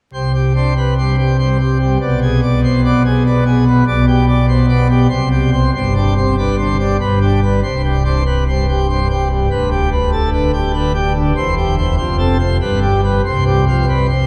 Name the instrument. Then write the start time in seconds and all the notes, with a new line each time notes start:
pipe organ
0.13 C2 C3 C5
0.34 G4
0.55 D4 C5
0.77 B4
0.98 G3 C5
1.19 G4
1.39 G3 C5
1.59 G4
1.81 G3
2.01 B1 B2 D5
2.22 G#4
2.42 D5
2.64 C5
2.85 B3 D5
3.05 G#4
3.26 B3 D5
3.46 G#4
3.67 B3
3.88 B1 B2 D5
4.08 G4
4.28 D5
4.48 C5
4.69 B3 D5
4.89 G4
5.09 C2 C3 C5
5.31 G4
5.52 C5
5.74 G1 G2 C5
5.95 D4 G4
6.17 C4 C5
6.38 D4 B4
6.58 D3 C5
6.79 D4 G4
7.00 G1 G2 B4
7.21 D4 G4
7.42 B4
7.63 C1 C2 C5
7.84 G4
8.04 D4 C5
8.26 B4
8.48 G2 C5
8.69 G4
8.89 G2 C5
9.10 G4
9.32 G2
9.51 D1 D2 B4
9.71 G4
9.92 B4
10.12 A4
10.33 D3 B4
10.53 G4
10.74 D3 B4
10.94 G4
11.15 D3
11.37 E1 E2 C5
11.57 G4
11.78 C5
11.97 F1 F2 C5
12.18 C4 A4
12.39 C5
12.61 G1 G2 B4
12.82 G3 G4
13.04 B4
13.25 C2 C3 C5
13.46 G3 G4
13.67 F3 C5
13.88 G3 B4
14.09 C4 C5